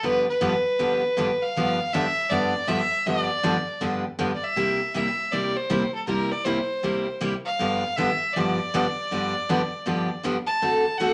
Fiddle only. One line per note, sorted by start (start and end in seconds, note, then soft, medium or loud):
0.05 0.29 B4 loud
0.30 1.44 B4 medium
1.42 1.94 F5 medium
1.93 2.31 E5 loud
2.30 2.69 D5 medium
2.68 3.08 E5 loud
3.06 3.82 D5 medium
4.35 4.45 D5 medium
4.44 4.95 E5 medium
4.95 5.33 E5 medium
5.32 5.58 D5 medium
5.57 5.94 C5 medium
5.95 6.07 A4 medium
6.07 6.33 A#4 medium
6.31 6.46 D5 medium
6.45 7.21 C5 medium
7.46 7.98 F5 loud
7.96 8.34 E5 loud
8.33 10.23 D5 loud
10.47 10.99 A5 medium
10.97 11.13 F#5 medium